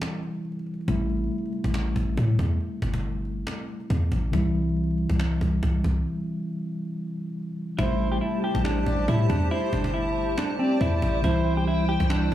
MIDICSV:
0, 0, Header, 1, 7, 480
1, 0, Start_track
1, 0, Key_signature, 0, "minor"
1, 0, Tempo, 431655
1, 977, Time_signature, 4, 2, 24, 8
1, 13727, End_track
2, 0, Start_track
2, 0, Title_t, "Analog synth pad"
2, 0, Program_c, 0, 89
2, 8657, Note_on_c, 0, 67, 82
2, 8657, Note_on_c, 0, 72, 75
2, 8657, Note_on_c, 0, 81, 89
2, 12459, Note_off_c, 0, 67, 0
2, 12459, Note_off_c, 0, 81, 0
2, 12501, Note_on_c, 0, 64, 81
2, 12501, Note_on_c, 0, 79, 91
2, 13727, Note_off_c, 0, 64, 0
2, 13727, Note_off_c, 0, 72, 0
2, 13727, Note_off_c, 0, 79, 0
2, 13727, End_track
3, 0, Start_track
3, 0, Title_t, "Soft synth lead"
3, 0, Program_c, 1, 80
3, 8657, Note_on_c, 1, 72, 100
3, 9108, Note_off_c, 1, 72, 0
3, 9856, Note_on_c, 1, 74, 80
3, 10085, Note_off_c, 1, 74, 0
3, 10576, Note_on_c, 1, 72, 105
3, 11028, Note_off_c, 1, 72, 0
3, 11777, Note_on_c, 1, 74, 88
3, 12454, Note_off_c, 1, 74, 0
3, 12498, Note_on_c, 1, 72, 108
3, 12949, Note_off_c, 1, 72, 0
3, 13727, End_track
4, 0, Start_track
4, 0, Title_t, "Clean electric guitar"
4, 0, Program_c, 2, 27
4, 8658, Note_on_c, 2, 64, 107
4, 9003, Note_off_c, 2, 64, 0
4, 9025, Note_on_c, 2, 67, 84
4, 9116, Note_off_c, 2, 67, 0
4, 9132, Note_on_c, 2, 64, 87
4, 9327, Note_off_c, 2, 64, 0
4, 9384, Note_on_c, 2, 67, 86
4, 9574, Note_off_c, 2, 67, 0
4, 9610, Note_on_c, 2, 62, 86
4, 10065, Note_off_c, 2, 62, 0
4, 10102, Note_on_c, 2, 64, 75
4, 10293, Note_off_c, 2, 64, 0
4, 10334, Note_on_c, 2, 62, 73
4, 10528, Note_off_c, 2, 62, 0
4, 10578, Note_on_c, 2, 64, 114
4, 10771, Note_off_c, 2, 64, 0
4, 10822, Note_on_c, 2, 62, 89
4, 11013, Note_off_c, 2, 62, 0
4, 11050, Note_on_c, 2, 64, 79
4, 11505, Note_off_c, 2, 64, 0
4, 11543, Note_on_c, 2, 62, 81
4, 11734, Note_off_c, 2, 62, 0
4, 11778, Note_on_c, 2, 60, 77
4, 11971, Note_off_c, 2, 60, 0
4, 12024, Note_on_c, 2, 64, 96
4, 12472, Note_off_c, 2, 64, 0
4, 12500, Note_on_c, 2, 64, 109
4, 12844, Note_off_c, 2, 64, 0
4, 12868, Note_on_c, 2, 67, 88
4, 12957, Note_off_c, 2, 67, 0
4, 12982, Note_on_c, 2, 64, 87
4, 13174, Note_off_c, 2, 64, 0
4, 13217, Note_on_c, 2, 67, 86
4, 13411, Note_off_c, 2, 67, 0
4, 13451, Note_on_c, 2, 62, 79
4, 13727, Note_off_c, 2, 62, 0
4, 13727, End_track
5, 0, Start_track
5, 0, Title_t, "Tine electric piano"
5, 0, Program_c, 3, 4
5, 0, Control_c, 3, 64, 127
5, 0, Note_on_c, 3, 48, 87
5, 0, Note_on_c, 3, 52, 74
5, 0, Note_on_c, 3, 55, 75
5, 0, Note_on_c, 3, 64, 93
5, 923, Note_off_c, 3, 48, 0
5, 927, Note_off_c, 3, 52, 0
5, 931, Note_off_c, 3, 55, 0
5, 934, Note_off_c, 3, 64, 0
5, 971, Note_on_c, 3, 48, 65
5, 978, Note_on_c, 3, 55, 60
5, 985, Note_on_c, 3, 57, 63
5, 990, Control_c, 3, 64, 0
5, 994, Note_on_c, 3, 64, 84
5, 1190, Control_c, 3, 64, 127
5, 4770, Note_off_c, 3, 48, 0
5, 4773, Note_off_c, 3, 55, 0
5, 4777, Note_off_c, 3, 57, 0
5, 4781, Note_off_c, 3, 64, 0
5, 4798, Note_on_c, 3, 48, 89
5, 4806, Note_on_c, 3, 52, 72
5, 4813, Note_on_c, 3, 55, 74
5, 4822, Note_on_c, 3, 64, 91
5, 4832, Control_c, 3, 64, 0
5, 5038, Control_c, 3, 64, 127
5, 8603, Note_off_c, 3, 48, 0
5, 8607, Note_off_c, 3, 52, 0
5, 8611, Note_off_c, 3, 55, 0
5, 8615, Note_off_c, 3, 64, 0
5, 8651, Note_on_c, 3, 48, 68
5, 8660, Note_on_c, 3, 55, 63
5, 8667, Note_on_c, 3, 57, 66
5, 8669, Control_c, 3, 64, 0
5, 8675, Note_on_c, 3, 64, 83
5, 8874, Control_c, 3, 64, 127
5, 12450, Note_off_c, 3, 48, 0
5, 12454, Note_off_c, 3, 55, 0
5, 12458, Note_off_c, 3, 57, 0
5, 12462, Note_off_c, 3, 64, 0
5, 12478, Note_on_c, 3, 48, 84
5, 12486, Note_on_c, 3, 52, 74
5, 12494, Note_on_c, 3, 55, 77
5, 12502, Note_on_c, 3, 64, 93
5, 12510, Control_c, 3, 64, 0
5, 12702, Control_c, 3, 64, 127
5, 13727, Note_off_c, 3, 48, 0
5, 13727, Note_off_c, 3, 52, 0
5, 13727, Note_off_c, 3, 55, 0
5, 13727, Note_off_c, 3, 64, 0
5, 13727, End_track
6, 0, Start_track
6, 0, Title_t, "808-style bass"
6, 0, Program_c, 4, 38
6, 978, Note_on_c, 4, 33, 112
6, 1438, Note_off_c, 4, 33, 0
6, 1826, Note_on_c, 4, 33, 103
6, 2164, Note_off_c, 4, 33, 0
6, 2178, Note_on_c, 4, 33, 105
6, 2408, Note_off_c, 4, 33, 0
6, 2418, Note_on_c, 4, 45, 105
6, 2648, Note_off_c, 4, 45, 0
6, 2657, Note_on_c, 4, 40, 104
6, 2888, Note_off_c, 4, 40, 0
6, 3137, Note_on_c, 4, 31, 105
6, 3829, Note_off_c, 4, 31, 0
6, 4338, Note_on_c, 4, 40, 106
6, 4568, Note_off_c, 4, 40, 0
6, 4578, Note_on_c, 4, 33, 108
6, 4808, Note_off_c, 4, 33, 0
6, 4818, Note_on_c, 4, 36, 108
6, 5631, Note_off_c, 4, 36, 0
6, 5666, Note_on_c, 4, 36, 106
6, 6004, Note_off_c, 4, 36, 0
6, 6018, Note_on_c, 4, 36, 110
6, 6248, Note_off_c, 4, 36, 0
6, 6258, Note_on_c, 4, 36, 108
6, 6488, Note_off_c, 4, 36, 0
6, 6498, Note_on_c, 4, 36, 108
6, 6728, Note_off_c, 4, 36, 0
6, 8658, Note_on_c, 4, 33, 115
6, 9118, Note_off_c, 4, 33, 0
6, 9506, Note_on_c, 4, 33, 109
6, 9844, Note_off_c, 4, 33, 0
6, 9858, Note_on_c, 4, 33, 107
6, 10088, Note_off_c, 4, 33, 0
6, 10098, Note_on_c, 4, 45, 105
6, 10328, Note_off_c, 4, 45, 0
6, 10337, Note_on_c, 4, 40, 107
6, 10568, Note_off_c, 4, 40, 0
6, 10817, Note_on_c, 4, 31, 106
6, 11508, Note_off_c, 4, 31, 0
6, 12018, Note_on_c, 4, 40, 108
6, 12248, Note_off_c, 4, 40, 0
6, 12257, Note_on_c, 4, 33, 109
6, 12488, Note_off_c, 4, 33, 0
6, 12498, Note_on_c, 4, 36, 114
6, 13311, Note_off_c, 4, 36, 0
6, 13345, Note_on_c, 4, 36, 106
6, 13683, Note_off_c, 4, 36, 0
6, 13727, End_track
7, 0, Start_track
7, 0, Title_t, "Cajon"
7, 17, Note_on_c, 9, 38, 120
7, 30, Note_off_c, 9, 38, 0
7, 30, Note_on_c, 9, 38, 99
7, 141, Note_off_c, 9, 38, 0
7, 259, Note_on_c, 9, 38, 40
7, 370, Note_off_c, 9, 38, 0
7, 386, Note_on_c, 9, 38, 25
7, 497, Note_off_c, 9, 38, 0
7, 499, Note_on_c, 9, 38, 26
7, 579, Note_off_c, 9, 38, 0
7, 579, Note_on_c, 9, 38, 29
7, 659, Note_off_c, 9, 38, 0
7, 659, Note_on_c, 9, 38, 33
7, 739, Note_off_c, 9, 38, 0
7, 739, Note_on_c, 9, 38, 34
7, 819, Note_off_c, 9, 38, 0
7, 819, Note_on_c, 9, 38, 38
7, 899, Note_off_c, 9, 38, 0
7, 899, Note_on_c, 9, 38, 43
7, 978, Note_on_c, 9, 36, 108
7, 1011, Note_off_c, 9, 38, 0
7, 1089, Note_off_c, 9, 36, 0
7, 1220, Note_on_c, 9, 38, 37
7, 1299, Note_off_c, 9, 38, 0
7, 1299, Note_on_c, 9, 38, 37
7, 1379, Note_off_c, 9, 38, 0
7, 1379, Note_on_c, 9, 38, 37
7, 1458, Note_off_c, 9, 38, 0
7, 1458, Note_on_c, 9, 38, 38
7, 1538, Note_off_c, 9, 38, 0
7, 1538, Note_on_c, 9, 38, 37
7, 1618, Note_off_c, 9, 38, 0
7, 1618, Note_on_c, 9, 38, 36
7, 1696, Note_off_c, 9, 38, 0
7, 1696, Note_on_c, 9, 38, 41
7, 1808, Note_off_c, 9, 38, 0
7, 1826, Note_on_c, 9, 36, 102
7, 1936, Note_on_c, 9, 38, 121
7, 1937, Note_off_c, 9, 36, 0
7, 1948, Note_off_c, 9, 38, 0
7, 1948, Note_on_c, 9, 38, 99
7, 2059, Note_off_c, 9, 38, 0
7, 2178, Note_on_c, 9, 36, 87
7, 2289, Note_off_c, 9, 36, 0
7, 2418, Note_on_c, 9, 36, 97
7, 2529, Note_off_c, 9, 36, 0
7, 2657, Note_on_c, 9, 36, 93
7, 2769, Note_off_c, 9, 36, 0
7, 2898, Note_on_c, 9, 38, 45
7, 3009, Note_off_c, 9, 38, 0
7, 3137, Note_on_c, 9, 36, 102
7, 3248, Note_off_c, 9, 36, 0
7, 3265, Note_on_c, 9, 36, 98
7, 3376, Note_off_c, 9, 36, 0
7, 3377, Note_on_c, 9, 38, 40
7, 3489, Note_off_c, 9, 38, 0
7, 3616, Note_on_c, 9, 38, 43
7, 3727, Note_off_c, 9, 38, 0
7, 3856, Note_on_c, 9, 38, 120
7, 3868, Note_off_c, 9, 38, 0
7, 3868, Note_on_c, 9, 38, 98
7, 3980, Note_off_c, 9, 38, 0
7, 4097, Note_on_c, 9, 38, 26
7, 4209, Note_off_c, 9, 38, 0
7, 4225, Note_on_c, 9, 38, 45
7, 4336, Note_off_c, 9, 38, 0
7, 4338, Note_on_c, 9, 36, 101
7, 4449, Note_off_c, 9, 36, 0
7, 4578, Note_on_c, 9, 36, 92
7, 4689, Note_off_c, 9, 36, 0
7, 4818, Note_on_c, 9, 36, 109
7, 4929, Note_off_c, 9, 36, 0
7, 5058, Note_on_c, 9, 38, 37
7, 5138, Note_off_c, 9, 38, 0
7, 5138, Note_on_c, 9, 38, 37
7, 5218, Note_off_c, 9, 38, 0
7, 5218, Note_on_c, 9, 38, 37
7, 5298, Note_off_c, 9, 38, 0
7, 5298, Note_on_c, 9, 38, 38
7, 5378, Note_off_c, 9, 38, 0
7, 5378, Note_on_c, 9, 38, 36
7, 5458, Note_off_c, 9, 38, 0
7, 5458, Note_on_c, 9, 38, 37
7, 5537, Note_off_c, 9, 38, 0
7, 5537, Note_on_c, 9, 38, 42
7, 5648, Note_off_c, 9, 38, 0
7, 5666, Note_on_c, 9, 36, 104
7, 5777, Note_off_c, 9, 36, 0
7, 5777, Note_on_c, 9, 38, 118
7, 5790, Note_off_c, 9, 38, 0
7, 5790, Note_on_c, 9, 38, 98
7, 5901, Note_off_c, 9, 38, 0
7, 6017, Note_on_c, 9, 36, 87
7, 6129, Note_off_c, 9, 36, 0
7, 6258, Note_on_c, 9, 36, 102
7, 6369, Note_off_c, 9, 36, 0
7, 6497, Note_on_c, 9, 36, 92
7, 6608, Note_off_c, 9, 36, 0
7, 8657, Note_on_c, 9, 36, 116
7, 8769, Note_off_c, 9, 36, 0
7, 9137, Note_on_c, 9, 38, 40
7, 9248, Note_off_c, 9, 38, 0
7, 9377, Note_on_c, 9, 38, 36
7, 9458, Note_off_c, 9, 38, 0
7, 9458, Note_on_c, 9, 38, 35
7, 9505, Note_on_c, 9, 36, 104
7, 9538, Note_off_c, 9, 38, 0
7, 9538, Note_on_c, 9, 38, 37
7, 9616, Note_off_c, 9, 36, 0
7, 9617, Note_off_c, 9, 38, 0
7, 9617, Note_on_c, 9, 38, 126
7, 9630, Note_off_c, 9, 38, 0
7, 9630, Note_on_c, 9, 38, 99
7, 9741, Note_off_c, 9, 38, 0
7, 9858, Note_on_c, 9, 36, 90
7, 9969, Note_off_c, 9, 36, 0
7, 9985, Note_on_c, 9, 38, 25
7, 10096, Note_off_c, 9, 38, 0
7, 10098, Note_on_c, 9, 36, 100
7, 10209, Note_off_c, 9, 36, 0
7, 10337, Note_on_c, 9, 36, 98
7, 10449, Note_off_c, 9, 36, 0
7, 10578, Note_on_c, 9, 38, 48
7, 10689, Note_off_c, 9, 38, 0
7, 10817, Note_on_c, 9, 36, 104
7, 10928, Note_off_c, 9, 36, 0
7, 10944, Note_on_c, 9, 36, 99
7, 11055, Note_off_c, 9, 36, 0
7, 11057, Note_on_c, 9, 38, 41
7, 11169, Note_off_c, 9, 38, 0
7, 11297, Note_on_c, 9, 38, 37
7, 11378, Note_off_c, 9, 38, 0
7, 11378, Note_on_c, 9, 38, 37
7, 11458, Note_off_c, 9, 38, 0
7, 11458, Note_on_c, 9, 38, 36
7, 11538, Note_off_c, 9, 38, 0
7, 11538, Note_on_c, 9, 38, 125
7, 11550, Note_off_c, 9, 38, 0
7, 11550, Note_on_c, 9, 38, 102
7, 11661, Note_off_c, 9, 38, 0
7, 11778, Note_on_c, 9, 38, 41
7, 11889, Note_off_c, 9, 38, 0
7, 11906, Note_on_c, 9, 38, 25
7, 12017, Note_off_c, 9, 38, 0
7, 12018, Note_on_c, 9, 36, 103
7, 12129, Note_off_c, 9, 36, 0
7, 12258, Note_on_c, 9, 36, 98
7, 12369, Note_off_c, 9, 36, 0
7, 12497, Note_on_c, 9, 36, 111
7, 12609, Note_off_c, 9, 36, 0
7, 12978, Note_on_c, 9, 38, 40
7, 13089, Note_off_c, 9, 38, 0
7, 13218, Note_on_c, 9, 38, 36
7, 13297, Note_off_c, 9, 38, 0
7, 13297, Note_on_c, 9, 38, 36
7, 13345, Note_on_c, 9, 36, 101
7, 13378, Note_off_c, 9, 38, 0
7, 13378, Note_on_c, 9, 38, 36
7, 13457, Note_off_c, 9, 36, 0
7, 13457, Note_off_c, 9, 38, 0
7, 13457, Note_on_c, 9, 38, 122
7, 13469, Note_off_c, 9, 38, 0
7, 13469, Note_on_c, 9, 38, 98
7, 13580, Note_off_c, 9, 38, 0
7, 13727, End_track
0, 0, End_of_file